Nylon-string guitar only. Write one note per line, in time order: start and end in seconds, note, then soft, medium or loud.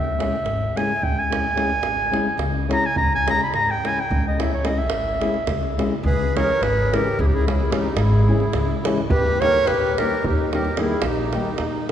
0.18 0.34 G#3 medium
0.18 0.34 C#4 medium
0.18 0.34 E4 medium
0.18 0.35 G#4 medium
0.75 0.91 G#3 medium
0.75 0.91 C#4 soft
0.75 0.91 E4 medium
0.75 0.92 G#4 medium
1.30 1.45 G#3 medium
1.30 1.45 C#4 soft
1.30 1.46 E4 medium
1.30 1.46 G#4 medium
1.55 1.70 G#3 medium
1.55 1.70 C#4 medium
1.55 1.70 E4 medium
1.55 1.70 G#4 medium
2.11 2.27 G#3 medium
2.11 2.27 C#4 medium
2.11 2.27 E4 medium
2.11 2.27 G#4 medium
2.68 2.84 G#3 medium
2.68 2.84 C#4 medium
2.68 2.84 E4 medium
2.68 2.85 G#4 medium
3.26 3.41 G#3 medium
3.26 3.41 C#4 medium
3.26 3.42 E4 medium
3.26 3.42 G#4 medium
3.84 3.99 G#3 medium
3.84 3.99 C#4 medium
3.84 3.99 E4 soft
3.84 3.99 G#4 medium
4.38 4.53 G#3 medium
4.38 4.53 C#4 medium
4.38 4.53 E4 medium
4.38 4.54 G#4 medium
4.63 4.78 G#3 medium
4.63 4.78 C#4 medium
4.63 4.78 E4 medium
4.63 4.79 G#4 medium
5.20 5.35 G#3 medium
5.20 5.35 C#4 medium
5.20 5.36 E4 medium
5.20 5.36 G#4 medium
5.78 5.92 G#3 medium
5.78 5.93 C#4 medium
5.78 5.93 E4 medium
5.78 5.93 G#4 medium
6.35 6.50 E3 medium
6.35 6.50 G#3 medium
6.35 6.50 C#4 medium
6.35 6.50 E4 medium
6.35 6.51 G#4 medium
6.92 7.06 E3 medium
6.92 7.07 G#3 medium
6.92 7.07 C#4 medium
6.92 7.07 E4 medium
6.92 7.07 G#4 medium
7.46 7.60 E3 medium
7.46 7.60 G#3 soft
7.46 7.61 C#4 medium
7.46 7.61 E4 medium
7.46 7.61 G#4 medium
7.70 7.85 E3 medium
7.70 7.85 G#3 medium
7.70 7.85 C#4 medium
7.70 7.86 E4 medium
7.70 7.86 G#4 medium
8.27 8.42 E3 medium
8.27 8.42 G#3 medium
8.27 8.43 C#4 medium
8.27 8.43 E4 medium
8.27 8.43 G#4 medium
8.84 8.99 E3 loud
8.84 8.99 G#3 medium
8.84 8.99 C#4 medium
8.84 8.99 E4 medium
8.84 9.00 G#4 medium
9.42 9.56 D#3 medium
9.42 9.56 G3 medium
9.42 9.57 A#3 medium
9.42 9.57 D#4 medium
9.42 9.57 G4 medium
9.99 10.13 D#3 medium
9.99 10.13 G3 medium
9.99 10.14 A#3 medium
9.99 10.14 D#4 medium
9.99 10.14 G4 medium
10.53 10.67 D#3 medium
10.53 10.67 G3 medium
10.53 10.67 A#3 medium
10.53 10.68 D#4 medium
10.53 10.68 G4 medium
10.78 10.92 D#3 medium
10.78 10.92 G3 medium
10.78 10.92 A#3 medium
10.78 10.92 D#4 medium
10.78 10.93 G4 medium
11.33 11.48 D#3 medium
11.33 11.48 G3 medium
11.33 11.48 A#3 medium
11.33 11.49 D#4 medium
11.33 11.49 G4 medium